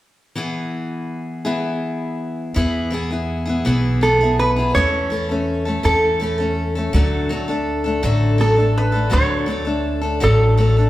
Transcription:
0.35 E3 B3 E4 G#4
1.45 E3 B3 E4 G#4
2.54 E2 E3 B3 E4 G#4
2.91 E3 B3 E4 G#4
3.11 B3 E4 G#4
3.45 B3 E4 G#4
3.65 B1 E3 B3 E4 G#4
4.01 E3 B3 E4 G#4 A4
4.21 B3 E4 G#4
4.39 B4
4.56 B3 E4 G#4
4.75 E2 E3 A3 C#4 A4 C#5
5.10 E3 A3 C#4 A4
5.29 A3 C#4 A4
5.65 A3 C#4 A4
5.83 E2 E3 A3 C#4 A4
6.20 E3 A3 C#4 A4
6.38 A3 C#4 A4
6.75 A3 C#4 A4
6.93 D2 D3 F#3 A3 D4 A4
7.29 F#3 A3 D4 A4
7.48 A3 D4 A4
7.84 A3 D4 A4
8.03 A1 D3 F#3 A3 D4 A4
8.38 F#3 A3 D4 A4
8.56 A3 D4 A4
8.78 B4
8.92 A3 D4 A4
9.10 D2 D3 F#3 A3 D4 A4 C#5
9.46 F#3 A3 D4 A4
9.65 A3 D4 A4
10.01 A3 D4 A4
10.20 A1 D3 F#3 A3 D4 A4
10.57 F#3 A3 D4 A4
10.77 A3 D4 A4

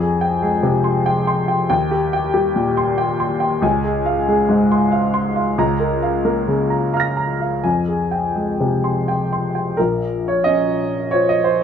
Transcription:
Already playing: F2 G#5
0.00 G#4
0.21 G5
0.42 G#3 G#4
0.63 C3
0.84 C6
1.06 G5
1.27 C6
1.48 G5
1.70 D#2 G5
1.91 G4
2.13 G5
2.34 G3 G4
2.56 A#2
2.77 C6
2.98 G5
3.20 C6
3.40 G5
3.62 C#2 G#5
3.84 G#4
4.06 F5
4.28 G#3 G#4
4.49 G#2
4.72 C6
4.92 F5
5.14 C6
5.36 F5
5.58 C#2 A#5
5.80 A#4
6.02 F5
6.25 A#3 A#4
6.48 C#3
6.70 A#5
6.93 F5 A#5 F6
7.00 A#6
7.17 A#5
7.41 F5
7.64 F2 G#5
7.88 G#4
8.11 G5
8.36 G#3 G#4
8.60 C3
8.84 C6
9.08 G5
9.33 C6
9.55 G5
9.77 A#1 A#4
10.28 C#5
10.44 C#4 D#5
11.11 F4 C5 C#5
11.29 D#5
11.44 C5

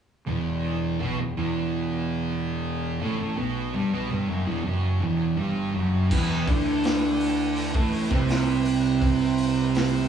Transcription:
0.27 E1 E2 E3
1.00 B1 B2 B3
1.19 E1 E2
1.37 E1 E2 E3
3.01 A1 A2 A3
3.19 A1 A2 A3
3.38 B1 B2 B3
3.74 G1 G2 G3
3.92 B1 B2 B3
4.10 G1 G2 G3
4.28 F#1 F#2 F#3
4.45 E1 E2 E3
4.64 F#1 F#2 F#3
5.01 E1 E2 E3
5.37 G1 G2 G3
5.74 F#1 F#2 F#3
6.11 E1 E2 E3 E4 B4 G5, kick, crash
6.47 D2 D3 D4, kick, open hi-hat
6.83 snare, open hi-hat
7.20 open hi-hat
7.56 open hi-hat
7.74 A1 A2 A3, kick
7.93 open hi-hat
8.10 C2 C3 C4, kick, snare
8.29 snare, open hi-hat
8.65 open hi-hat
9.02 kick, open hi-hat
9.38 open hi-hat
9.75 snare, open hi-hat

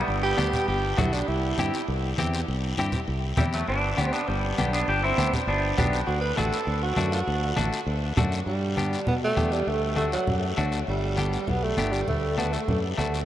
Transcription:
Already playing: G3 B3
0.08 G1, high conga, long guiro
0.23 G4
0.37 D2 B3 D4 G4, high conga, short guiro
0.53 low conga, short guiro
0.68 G1 G4, high conga, long guiro
0.98 B1 B3 D4 E4 F#4, high conga, low conga, short guiro
1.13 D4, short guiro
1.28 C2 E4, high conga, long guiro
1.58 G2 C4 E4 G4, high conga, short guiro
1.74 short guiro
1.88 C2, high conga, long guiro
2.18 E2 C4 E4 G4, high conga, short guiro
2.34 short guiro
2.48 C2, high conga, long guiro
2.77 G2 C4 E4 G4, high conga, short guiro
2.92 low conga, short guiro
3.08 C2, high conga, long guiro
3.37 E2 E3 G3 C4 E4 G4, high conga, low conga, short guiro
3.53 F#3 A3, short guiro
3.67 G1 B3 D4, high conga, long guiro
3.97 D2 B3 D4 G4, high conga, short guiro
4.13 B3 D4, short guiro
4.28 G1 G3 B3, high conga, long guiro
4.58 B1 B3 D4 G4, high conga, short guiro
4.73 B3 D4, short guiro
4.88 G1 D4 G4, high conga, long guiro
5.03 C4 E4
5.18 D2 B3 D4 G4, high conga, short guiro
5.33 low conga, short guiro
5.47 G1 B3 D4, high conga, long guiro
5.77 B1 B3 D4 G4, high conga, low conga, short guiro
5.93 short guiro
6.07 D2 F#4, high conga, long guiro
6.21 B4
6.37 A1 A3 D4 F#4 A4, high conga, short guiro
6.53 short guiro
6.67 D2, high conga, long guiro
6.83 F#4
6.96 F#2 A3 D4 F#4, high conga, short guiro
7.12 F#4, short guiro
7.27 D2, high conga, long guiro
7.56 A1 A3 D4 F#4, high conga, short guiro
7.73 short guiro
7.86 D2, high conga, long guiro
8.17 F#2 A3 D4 F#4, high conga, low conga, short guiro
8.32 short guiro
8.46 G2 G3, high conga, long guiro
8.77 B3 D4 G4, high conga, short guiro
8.93 short guiro
9.07 B2 B3, high conga, low conga, long guiro
9.24 A3
9.37 E2 B3 D4 G4, high conga, low conga, short guiro
9.52 G3, short guiro
9.67 D2 A3, high conga, long guiro
9.96 A3 D4 F#4, high conga, short guiro
10.12 F#3, short guiro
10.27 F#2, high conga, low conga, long guiro
10.57 D2 A3 D4 F#4, high conga, short guiro
10.72 short guiro
10.87 G1 G3, high conga, long guiro
11.17 B3 D4 G4, high conga, short guiro
11.33 short guiro
11.47 B1 B3, high conga, low conga, long guiro
11.64 A3
11.77 G1 B3 D4 G4, high conga, short guiro
11.93 G3, short guiro
12.08 D2 A3, high conga, low conga, long guiro
12.38 A3 B3 D4 F#4, high conga, short guiro
12.53 A3, short guiro
12.68 F#2, high conga, low conga, long guiro
12.98 D2 A3 D4 F#4, high conga, short guiro
13.14 short guiro

